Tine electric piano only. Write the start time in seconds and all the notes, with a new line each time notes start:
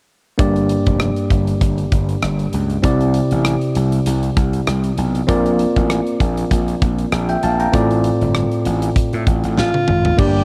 0.38 G2 A#3 D4 G4 D5
2.82 C3 C4 E4 G4 D5
5.27 A#3 C4 F4 A#4 D5
7.29 E5 G5
7.43 F5 A5
7.60 G5 A#5
7.72 A2 C4 F4 A4 D5
10.17 G2 A#3 D4 G4 D5